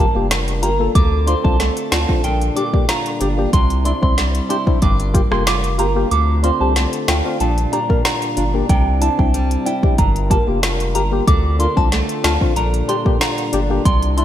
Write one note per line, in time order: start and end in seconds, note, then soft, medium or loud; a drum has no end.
0.00 1.02 G2 medium
0.00 0.94 G3 medium
0.00 0.62 A#3 medium
0.00 0.93 D4 medium
0.00 2.22 F4 medium
0.00 0.94 A#4 medium
0.00 downlifter medium
0.15 0.64 F1 medium
0.15 0.27 A#3 medium
0.15 0.28 F4 medium
0.15 0.28 G4 medium
0.31 1.92 F4 medium
0.31 snare loud
0.31 closed hi-hat medium
0.48 closed hi-hat medium
0.62 0.89 G1 medium
0.62 1.02 A#3 medium
0.62 0.70 F4 medium
0.62 0.70 G4 medium
0.62 0.74 A#5 medium
0.62 closed hi-hat medium
0.80 0.92 A#3 medium
0.80 0.92 F4 medium
0.80 0.92 A4 medium
0.95 1.35 D2 loud
0.95 3.56 D3 medium
0.95 2.23 D3 medium
0.95 2.23 A3 medium
0.95 2.23 C4 medium
0.95 1.06 D6 loud
0.95 kick loud
0.95 closed hi-hat medium
1.27 2.31 C4 medium
1.27 1.34 D4 medium
1.27 1.35 F4 medium
1.27 1.38 C6 medium
1.27 closed hi-hat medium
1.44 1.71 C2 medium
1.44 1.56 C4 medium
1.44 1.57 D4 medium
1.44 1.57 F4 medium
1.44 1.54 A5 medium
1.44 kick medium
1.60 2.31 A3 medium
1.60 snare medium
1.60 closed hi-hat medium
1.77 closed hi-hat medium
1.91 2.06 D2 loud
1.91 1.98 D4 medium
1.91 2.31 F4 medium
1.91 1.99 F4 medium
1.91 2.03 A5 medium
1.91 snare loud
1.91 closed hi-hat medium
2.08 2.21 C4 medium
2.08 2.21 D4 medium
2.08 2.21 F4 medium
2.08 kick medium
2.24 2.50 A#1 loud
2.24 3.53 A#2 medium
2.24 3.52 G3 medium
2.24 3.52 A#3 medium
2.24 3.52 D4 medium
2.24 2.35 G5 medium
2.24 closed hi-hat medium
2.41 closed hi-hat medium
2.56 2.63 D4 medium
2.56 3.21 D4 medium
2.56 2.64 G4 medium
2.56 2.67 D6 medium
2.56 closed hi-hat medium
2.73 2.85 A#3 medium
2.73 2.86 D4 medium
2.73 2.86 G4 medium
2.73 kick medium
2.89 3.60 F4 medium
2.89 3.35 A#5 medium
2.89 snare loud
2.89 closed hi-hat medium
3.06 closed hi-hat medium
3.20 3.47 G1 loud
3.20 3.28 D4 medium
3.20 3.85 D4 medium
3.20 3.28 G4 medium
3.20 closed hi-hat medium
3.38 3.50 A#3 medium
3.38 3.50 D4 medium
3.38 3.51 G4 medium
3.53 3.93 C2 loud
3.53 4.81 C3 medium
3.53 4.82 C3 medium
3.53 4.81 C4 medium
3.53 6.09 D4 medium
3.53 4.81 E4 medium
3.53 3.64 C6 loud
3.53 kick loud
3.53 closed hi-hat medium
3.70 closed hi-hat soft
3.85 3.92 D4 medium
3.85 5.14 D4 medium
3.85 3.93 E4 medium
3.85 3.96 C6 medium
3.85 closed hi-hat medium
4.02 4.41 C2 medium
4.02 4.14 C4 medium
4.02 4.15 D4 medium
4.02 4.15 E4 medium
4.02 4.12 C6 medium
4.02 kick medium
4.18 4.89 G3 medium
4.18 snare medium
4.18 closed hi-hat medium
4.35 closed hi-hat medium
4.49 4.57 D4 medium
4.49 4.89 E4 medium
4.49 4.57 G4 medium
4.49 4.61 C6 medium
4.49 closed hi-hat medium
4.66 4.79 C4 medium
4.66 4.79 D4 medium
4.66 4.79 E4 medium
4.66 kick loud
4.82 5.22 G1 loud
4.82 6.18 G2 medium
4.82 6.10 G3 medium
4.82 7.38 F4 medium
4.82 6.10 A#4 medium
4.82 4.93 D6 medium
4.82 kick loud
4.82 closed hi-hat medium
5.00 closed hi-hat medium
5.14 5.78 A#3 medium
5.14 5.21 F4 medium
5.14 5.22 G4 medium
5.14 kick loud
5.14 closed hi-hat medium
5.31 5.81 F1 medium
5.31 5.43 A#3 medium
5.31 5.44 F4 medium
5.31 5.44 G4 medium
5.31 5.41 C6 medium
5.31 cross-stick medium
5.47 7.08 F4 medium
5.47 5.58 D6 medium
5.47 snare loud
5.47 closed hi-hat medium
5.64 closed hi-hat medium
5.78 6.05 G1 loud
5.78 6.18 A#3 medium
5.78 5.86 F4 medium
5.78 5.86 G4 medium
5.78 5.90 A#5 medium
5.78 closed hi-hat medium
5.95 6.08 A#3 medium
5.95 6.08 F4 medium
5.95 6.09 G4 medium
6.11 6.51 D2 loud
6.11 8.73 D3 medium
6.11 7.39 D3 medium
6.11 7.39 A3 medium
6.11 7.39 C4 medium
6.11 6.22 D6 loud
6.11 closed hi-hat medium
6.43 7.47 C4 medium
6.43 6.50 D4 medium
6.43 6.51 F4 medium
6.43 6.55 C6 medium
6.43 closed hi-hat medium
6.60 6.87 C2 medium
6.60 6.73 C4 medium
6.60 6.73 D4 medium
6.60 6.73 G4 medium
6.60 6.70 A5 medium
6.76 7.47 A3 medium
6.76 snare medium
6.76 closed hi-hat medium
6.93 closed hi-hat medium
7.08 7.22 D2 medium
7.08 7.15 D4 medium
7.08 7.47 F4 medium
7.08 7.15 F4 medium
7.08 7.19 G5 medium
7.08 snare loud
7.08 closed hi-hat medium
7.25 7.37 C4 medium
7.25 7.37 D4 medium
7.25 7.38 F4 medium
7.40 7.67 A#1 loud
7.40 8.69 A#2 medium
7.40 8.68 G3 medium
7.40 8.68 A#3 medium
7.40 9.96 D4 medium
7.40 7.52 A5 medium
7.40 closed hi-hat medium
7.58 closed hi-hat medium
7.72 7.79 D4 medium
7.72 8.37 D4 medium
7.72 7.80 G4 medium
7.72 7.84 A#5 medium
7.72 closed hi-hat medium
7.89 8.02 A#3 medium
7.89 8.02 D4 medium
7.89 8.02 A#4 medium
7.89 kick medium
8.05 8.76 F4 medium
8.05 8.51 A#5 medium
8.05 snare loud
8.05 closed hi-hat medium
8.22 closed hi-hat medium
8.37 8.63 G1 loud
8.37 8.44 D4 medium
8.37 9.01 D4 medium
8.37 8.44 F4 medium
8.37 closed hi-hat medium
8.54 8.66 A#3 medium
8.54 8.66 D4 medium
8.54 8.67 G4 medium
8.69 9.09 C2 loud
8.69 9.97 C3 medium
8.69 9.98 C3 medium
8.69 9.97 C4 medium
8.69 9.97 E4 medium
8.69 8.80 G5 loud
8.69 kick loud
8.69 closed hi-hat medium
9.01 9.08 D4 medium
9.01 10.30 D4 medium
9.01 9.09 E4 medium
9.01 9.13 A5 medium
9.01 closed hi-hat medium
9.18 9.57 C2 medium
9.18 9.31 C4 medium
9.18 9.31 D4 medium
9.18 9.31 E4 medium
9.18 9.29 G5 medium
9.18 kick medium
9.34 10.05 G3 medium
9.34 closed hi-hat medium
9.51 closed hi-hat medium
9.66 9.73 D4 medium
9.66 10.05 E4 medium
9.66 9.73 E4 medium
9.66 9.77 G5 medium
9.66 closed hi-hat medium
9.83 9.95 C4 medium
9.83 9.95 D4 medium
9.83 9.96 G4 medium
9.83 kick loud
9.98 10.38 G1 loud
9.98 11.34 G2 medium
9.98 11.26 G3 medium
9.98 11.26 D4 medium
9.98 12.54 F4 medium
9.98 11.26 A#4 medium
9.98 10.09 A#5 medium
9.98 kick loud
9.98 closed hi-hat medium
10.16 closed hi-hat medium
10.30 10.94 A#3 medium
10.30 10.37 F4 medium
10.30 10.38 G4 medium
10.30 10.42 A5 medium
10.30 kick loud
10.30 closed hi-hat medium
10.47 10.97 F1 medium
10.47 10.60 A#3 medium
10.47 10.60 F4 medium
10.47 10.60 G4 medium
10.63 12.24 F4 medium
10.63 snare loud
10.63 closed hi-hat medium
10.80 closed hi-hat medium
10.95 11.21 G1 medium
10.95 11.34 A#3 medium
10.95 11.02 F4 medium
10.95 11.02 G4 medium
10.95 11.06 A#5 medium
10.95 closed hi-hat medium
11.12 11.24 A#3 medium
11.12 11.24 F4 medium
11.12 11.25 G4 medium
11.27 11.67 D2 loud
11.27 12.55 D3 medium
11.27 13.88 D3 medium
11.27 12.55 A3 medium
11.27 12.55 C4 medium
11.27 11.38 D6 loud
11.27 kick loud
11.27 closed hi-hat medium
11.59 11.77 A#3 medium
11.59 11.66 D4 medium
11.59 11.67 F4 medium
11.59 11.71 C6 medium
11.59 closed hi-hat medium
11.76 12.03 C2 medium
11.76 11.89 C4 medium
11.76 12.63 C4 medium
11.76 11.89 D4 medium
11.76 11.89 F4 medium
11.76 11.87 A5 medium
11.76 kick medium
11.92 12.63 A3 medium
11.92 snare medium
11.92 closed hi-hat medium
12.09 closed hi-hat medium
12.24 12.38 D2 loud
12.24 12.31 D4 medium
12.24 12.63 F4 medium
12.24 12.31 F4 medium
12.24 12.35 A5 medium
12.24 snare loud
12.24 closed hi-hat medium
12.41 12.53 C4 medium
12.41 12.54 D4 medium
12.41 12.54 F4 medium
12.41 kick medium
12.56 12.83 A#1 loud
12.56 13.85 A#2 medium
12.56 13.84 G3 medium
12.56 13.84 A#3 medium
12.56 14.25 D4 medium
12.56 12.67 A#5 medium
12.56 closed hi-hat medium
12.74 closed hi-hat medium
12.88 12.95 D4 medium
12.88 13.53 D4 medium
12.88 12.96 G4 medium
12.88 13.00 C6 medium
12.88 closed hi-hat medium
13.05 13.18 A#3 medium
13.05 13.18 D4 medium
13.05 13.18 G4 medium
13.05 kick medium
13.21 13.92 F4 medium
13.21 13.67 A#5 medium
13.21 snare loud
13.21 closed hi-hat medium
13.38 closed hi-hat medium
13.53 13.79 G1 loud
13.53 13.60 D4 medium
13.53 14.17 D4 medium
13.53 13.60 G4 medium
13.53 closed hi-hat medium
13.70 13.82 A#3 medium
13.70 13.82 D4 medium
13.70 13.83 G4 medium
13.85 14.25 C2 loud
13.85 14.25 C3 medium
13.85 14.25 C4 medium
13.85 14.25 E4 medium
13.85 13.96 C6 loud
13.85 kick loud
13.85 closed hi-hat medium
14.02 closed hi-hat medium
14.17 14.24 D4 medium
14.17 14.25 D4 medium
14.17 14.25 E4 medium
14.17 14.25 C6 medium
14.17 closed hi-hat medium